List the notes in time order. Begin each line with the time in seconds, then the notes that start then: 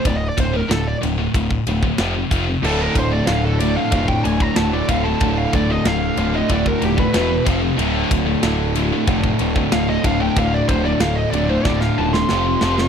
0.05 D1 D2 A2 D5, kick, ride
0.17 D#5
0.29 D5
0.37 D1 D2 A2 C5, kick, ride
0.54 D2 A2 A#4
0.69 D1 D2 A2 A4, snare, ride
0.87 D5
1.02 D1 D2 A2, ride
1.18 D2 A2
1.34 D1 D2 A2, kick, ride
1.51 kick
1.67 D1 D2 A2, ride
1.83 D2 A2, kick
1.98 F1 F2 C3 F3, snare, ride
2.17 F2 C3
2.31 F1 F2 C3 F3, kick, ride
2.48 F2 C3
2.63 D1 D2 A2 D3 A4, crash
2.81 A#4
2.95 D1 D2 A2, kick, ride
2.99 C5
3.11 D2 A2 D5
3.27 D1 D2 A2 D3 F5, snare, ride
3.45 A4
3.59 D2 A2 D3 D5, ride
3.76 D2 A2 F5
3.91 F1 D2 A2 D3 F5, kick, ride
4.08 G5, kick
4.23 D1 D2 A2 G#5, ride
4.40 D2 A2 A#5, kick
4.56 D1 D2 A2 D3 A5, snare, ride
4.73 D2 A2 D5
4.89 D1 D2 A2 D3 F5, kick, ride
5.04 D2 A2 A5
5.20 D1 D2 A2 D3 A5, kick, ride
5.38 F5
5.53 D1 D2 A2 D5, kick, ride
5.70 D2 A2 D#5
5.85 D1 D2 A2 D3 F5, snare, ride
6.17 D1 D2 A2 D3, ride
6.34 D2 A2 D#5
6.49 D1 D2 A2 D3 D5, kick, ride
6.66 A#4, kick
6.82 D#1 D2 A2 G4, ride
6.97 D2 A2 B4, kick
7.13 E1 E2 B2 E3, snare, ride
7.29 E2 B2
7.45 F1 F2 C3 F3, kick, ride
7.62 F2 C3
7.78 D1 D2 A2 D3, ride
8.10 D1 D2 A2, kick, ride
8.26 D2 A2
8.43 D1 D2 A2 D3, snare, ride
8.75 D2 A2 D3, ride
8.93 D2 A2
9.07 F1 D2 A2 D3, kick, ride
9.24 kick
9.39 D1 D2 A2, ride
9.56 D2 A2, kick
9.72 D1 D2 A2 D3 F5, snare, ride
9.89 D2 A2 D#5
10.04 D1 D2 A2 D3 F5, kick, ride
10.20 D2 A2 G5
10.36 D1 D2 A2 D3 F5, kick, ride
10.54 D5
10.69 D1 D2 A2 C5, kick, ride
10.85 D2 A2 D5
11.00 D1 D2 A2 D3 F5, snare, ride
11.16 D#5
11.31 D1 D2 A2 D3 D5, ride
11.49 D2 A2 C5
11.64 D1 D2 A2 D3 D5, kick, snare
11.80 F5, snare
11.98 D#1 D2 A2 A5
12.13 D2 A2 C6, snare
12.29 F1 F2 C3 F3, snare
12.46 F2 C3
12.61 F1 F2 C3 F3, snare
12.78 F2 C3, snare